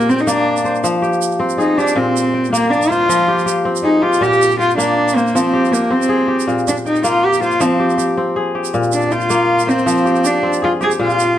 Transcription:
0.00 0.89 A#2 medium
0.00 0.11 A#3 loud
0.00 0.95 C4 medium
0.00 0.94 G4 medium
0.00 0.15 G#4 medium
0.00 shaker soft
0.09 0.22 C4 medium
0.09 1.02 G5 medium
0.09 shaker soft
0.18 0.29 D#4 medium
0.18 shaker soft
0.27 2.20 A#3 medium
0.27 0.65 D4 medium
0.27 shaker medium
0.57 shaker soft
0.65 1.84 C5 medium
0.65 shaker soft
0.75 shaker soft
0.84 2.02 F3 medium
0.84 shaker medium
1.02 1.64 G4 medium
1.02 shaker soft
1.13 shaker soft
1.22 shaker medium
1.31 shaker soft
1.40 3.20 C4 medium
1.49 shaker soft
1.58 1.79 D#4 medium
1.58 2.40 G#4 medium
1.58 shaker soft
1.78 1.98 D4 medium
1.78 3.19 G4 medium
1.78 shaker soft
1.87 shaker medium
1.96 3.15 A#2 medium
1.96 2.53 C4 medium
2.17 shaker medium
2.34 3.27 G5 medium
2.45 shaker soft
2.53 4.46 A#3 medium
2.53 2.73 A#3 medium
2.53 shaker medium
2.71 2.92 D4 medium
2.71 shaker soft
2.82 shaker medium
2.90 3.47 F4 loud
2.90 4.09 C5 medium
2.90 shaker soft
3.09 4.27 F3 medium
3.09 shaker medium
3.28 3.46 G4 medium
3.39 shaker soft
3.46 4.02 G4 medium
3.46 shaker medium
3.65 5.45 C4 medium
3.76 shaker medium
3.84 4.04 D#4 medium
3.84 4.65 G#4 medium
4.02 4.24 F4 loud
4.02 5.44 G4 medium
4.13 shaker medium
4.21 5.40 A#2 medium
4.21 4.59 G4 loud
4.21 shaker soft
4.33 shaker soft
4.42 shaker medium
4.51 shaker soft
4.59 4.77 F4 loud
4.59 5.52 G5 medium
4.59 shaker soft
4.70 shaker soft
4.78 6.71 A#3 medium
4.78 5.18 D4 loud
4.78 shaker medium
5.08 shaker medium
5.16 5.37 A#3 medium
5.16 6.35 C5 medium
5.16 shaker soft
5.27 shaker soft
5.35 6.53 F3 medium
5.35 5.74 C4 medium
5.35 shaker medium
5.53 5.71 G4 medium
5.65 shaker soft
5.71 5.94 A#3 medium
5.71 6.27 G4 medium
5.71 shaker medium
5.90 7.70 C4 medium
5.90 6.48 C4 loud
6.02 shaker medium
6.09 6.92 G#4 medium
6.28 7.69 G4 medium
6.40 shaker soft
6.47 7.66 A#2 medium
6.47 shaker soft
6.59 shaker soft
6.68 6.76 D4 medium
6.68 shaker medium
6.77 shaker soft
6.86 7.04 D#4 medium
6.86 7.79 G5 medium
6.86 shaker soft
6.96 shaker soft
7.04 8.97 A#3 medium
7.04 7.27 F4 loud
7.04 shaker medium
7.25 7.43 G4 medium
7.33 shaker soft
7.41 7.64 F4 medium
7.41 8.60 C5 medium
7.41 shaker soft
7.51 shaker soft
7.60 8.79 F3 medium
7.60 8.00 C4 medium
7.60 shaker medium
7.79 7.97 G4 medium
7.90 shaker soft
7.98 8.54 G4 medium
7.98 shaker medium
8.17 9.97 C4 medium
8.36 9.18 G#4 medium
8.55 9.96 G4 medium
8.65 shaker soft
8.74 9.92 A#2 medium
8.74 shaker soft
8.83 shaker soft
8.92 9.14 D4 medium
8.92 shaker medium
9.02 shaker soft
9.11 9.70 F4 loud
9.11 10.05 G5 medium
9.11 shaker soft
9.21 shaker soft
9.30 11.23 A#3 medium
9.30 shaker medium
9.59 shaker soft
9.67 10.28 C4 medium
9.67 10.86 C5 medium
9.67 shaker soft
9.78 shaker soft
9.86 11.05 F3 medium
9.86 shaker medium
9.97 shaker soft
10.05 10.24 G4 medium
10.05 shaker soft
10.15 shaker soft
10.24 10.44 D4 medium
10.24 10.80 G4 medium
10.24 shaker medium
10.43 11.39 C4 medium
10.53 shaker medium
10.62 10.72 F4 medium
10.62 11.39 G#4 medium
10.81 11.39 G4 medium
10.81 10.91 G#4 medium
10.81 shaker soft
10.91 shaker soft
10.99 11.39 A#2 medium
10.99 11.39 F4 loud
11.10 shaker soft
11.20 shaker medium

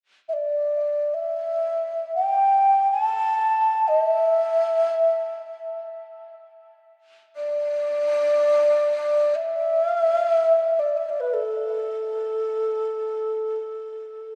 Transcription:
0.28 0.34 E5 medium
0.33 1.15 D5 medium
1.13 2.14 E5 medium
2.15 2.89 G5 medium
2.91 3.89 A5 medium
3.87 4.01 D#5 medium
4.01 5.67 E5 medium
7.35 9.36 D5 medium
9.35 9.86 E5 medium
9.86 10.00 F5 medium
10.00 10.15 E5 medium
10.15 10.29 F5 medium
10.29 10.80 E5 medium
10.79 10.98 D5 medium
10.97 11.10 E5 medium
11.09 11.21 D5 medium
11.20 11.35 B4 medium
11.33 14.35 A4 medium

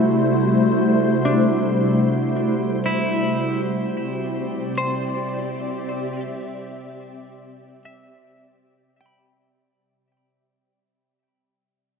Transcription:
0.00 9.88 C3 medium
0.00 9.87 G3 medium
0.00 3.09 A3 medium
0.00 5.76 E4 medium
0.00 5.17 F#4 medium
0.00 5.78 C5 medium
1.25 2.70 D4 soft
2.86 3.60 E4 medium
3.09 9.76 C4 medium
3.56 9.75 D5 medium
3.69 9.75 G4 medium
4.48 9.77 E5 medium
4.78 6.22 C5 medium
7.85 9.05 E5 medium
9.01 10.26 G5 medium
9.06 10.29 B5 soft

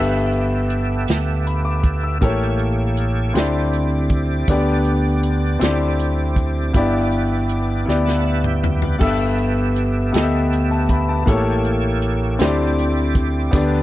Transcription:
0.00 1.05 G1 medium
0.00 1.04 G2 medium
0.00 0.93 B3 medium
0.00 2.18 B3 medium
0.00 0.93 G4 medium
0.00 2.18 G4 medium
0.00 0.94 A4 medium
0.00 2.18 A4 medium
0.00 0.13 B4 soft
0.00 0.95 E5 medium
0.00 2.18 E5 medium
0.32 closed hi-hat soft
0.70 closed hi-hat soft
1.08 2.18 D2 medium
1.08 snare medium
1.08 closed hi-hat medium
1.47 1.65 B5 soft
1.47 closed hi-hat soft
1.65 2.01 D6 medium
1.83 kick medium
1.83 closed hi-hat soft
2.03 2.39 E6 soft
2.21 3.31 A1 medium
2.21 3.31 A2 medium
2.21 3.20 A#3 medium
2.21 3.35 A#3 medium
2.21 3.21 G4 medium
2.21 3.35 G4 medium
2.21 3.35 A4 soft
2.21 3.21 A4 medium
2.21 2.28 A#4 soft
2.21 3.22 C#5 medium
2.21 kick medium
2.21 closed hi-hat medium
2.28 3.38 C#5 medium
2.59 closed hi-hat soft
2.97 closed hi-hat soft
3.34 4.44 D2 medium
3.34 4.45 D3 medium
3.34 4.33 C4 medium
3.34 4.49 C4 medium
3.34 4.34 E4 medium
3.34 4.48 E4 soft
3.34 3.42 F#4 soft
3.34 4.34 G4 medium
3.34 4.48 D5 medium
3.34 4.35 D5 medium
3.34 snare medium
3.34 closed hi-hat medium
3.41 4.48 G4 medium
3.73 closed hi-hat soft
4.09 kick medium
4.09 closed hi-hat soft
4.48 5.57 D2 medium
4.48 5.58 D3 medium
4.48 5.47 B3 medium
4.48 5.61 B3 medium
4.48 5.62 D4 medium
4.48 5.48 D4 medium
4.48 5.62 G4 medium
4.48 5.48 G4 medium
4.48 5.60 D5 medium
4.48 5.48 D5 medium
4.48 kick medium
4.48 closed hi-hat medium
4.85 closed hi-hat soft
5.23 closed hi-hat soft
5.59 6.71 D2 medium
5.59 6.71 D3 medium
5.59 6.59 C4 medium
5.59 6.74 C4 medium
5.59 6.60 E4 medium
5.59 6.73 E4 medium
5.59 5.68 F#4 soft
5.59 6.60 G4 medium
5.59 6.73 D5 medium
5.59 6.61 D5 medium
5.59 snare medium
5.59 closed hi-hat medium
5.67 6.72 G4 medium
5.99 closed hi-hat soft
6.36 kick medium
6.36 closed hi-hat soft
6.73 7.84 G1 medium
6.73 7.84 G2 medium
6.73 7.73 B3 medium
6.73 8.97 B3 medium
6.73 8.96 E4 medium
6.73 7.74 E4 medium
6.73 8.96 G4 soft
6.73 7.74 G4 medium
6.73 7.85 D5 medium
6.73 7.75 D5 medium
6.73 kick medium
6.73 closed hi-hat medium
7.11 closed hi-hat soft
7.49 closed hi-hat soft
7.86 8.97 D2 medium
7.86 8.86 B3 medium
7.86 8.86 E4 medium
7.86 8.87 G4 medium
7.86 8.87 D5 medium
7.86 snare soft
8.06 8.43 F#5 soft
8.06 8.42 A5 medium
8.06 snare soft
8.23 8.45 E5 medium
8.44 8.61 E5 soft
8.44 8.62 G5 medium
8.44 mid tom medium
8.62 8.81 E5 medium
8.62 8.98 G5 medium
8.62 floor tom medium
8.82 9.19 B4 soft
8.82 9.18 D5 medium
8.82 floor tom medium
8.99 10.10 G1 medium
8.99 10.10 G2 medium
8.99 9.08 A#3 soft
8.99 9.99 B3 medium
8.99 9.99 G4 medium
8.99 11.23 G4 medium
8.99 10.00 A4 medium
8.99 11.24 A4 medium
8.99 11.24 E5 medium
8.99 10.00 E5 medium
8.99 kick medium
8.99 crash medium
9.09 11.27 B3 medium
9.38 closed hi-hat soft
9.76 closed hi-hat soft
10.12 11.23 D2 medium
10.12 11.12 B3 medium
10.12 11.12 G4 medium
10.12 11.13 A4 medium
10.12 10.22 D#5 medium
10.12 snare loud
10.12 closed hi-hat medium
10.23 11.17 E5 medium
10.53 closed hi-hat soft
10.71 10.89 A5 medium
10.89 11.08 B5 medium
10.89 kick medium
10.89 closed hi-hat soft
11.09 11.44 A5 medium
11.26 12.36 A1 medium
11.26 12.36 A2 medium
11.26 12.25 A#3 medium
11.26 12.41 A#3 medium
11.26 12.26 G4 medium
11.26 12.39 G4 medium
11.26 12.41 A4 medium
11.26 12.26 A4 medium
11.26 12.39 C#5 medium
11.26 12.27 C#5 medium
11.26 kick medium
11.26 closed hi-hat medium
11.65 closed hi-hat soft
12.02 closed hi-hat soft
12.39 13.49 D2 medium
12.39 13.49 D3 medium
12.39 13.38 C4 medium
12.39 13.53 C4 medium
12.39 13.53 E4 medium
12.39 13.39 E4 medium
12.39 13.51 G4 medium
12.39 13.39 G4 medium
12.39 12.47 C#5 medium
12.39 13.40 D5 medium
12.39 snare loud
12.39 closed hi-hat medium
12.47 13.53 D5 medium
12.79 closed hi-hat soft
13.15 kick medium
13.15 closed hi-hat soft
13.51 13.83 D2 medium
13.51 13.83 D3 medium
13.51 13.83 B3 medium
13.51 13.83 D4 medium
13.51 13.83 G4 medium
13.51 13.83 D5 medium
13.51 kick medium
13.51 closed hi-hat medium
13.51 tambourine medium

